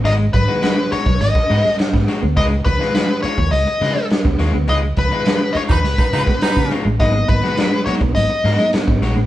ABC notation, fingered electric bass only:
X:1
M:4/4
L:1/16
Q:1/4=104
K:G#dor
V:1 name="Fingered electric bass" clef=bass
G,,,2 G,,, z4 B,,, G,,, z G,, z2 G,, z =D,, | C,,2 C,, z4 D,, C,, z C, z2 C,, D,, =D,, | C,,2 C,, z4 D,, C,, z C, z2 C, z =A,,, | G,,,2 G,,, z4 B,,, G,,, z G,, z2 G,,, A,,, =A,,, |]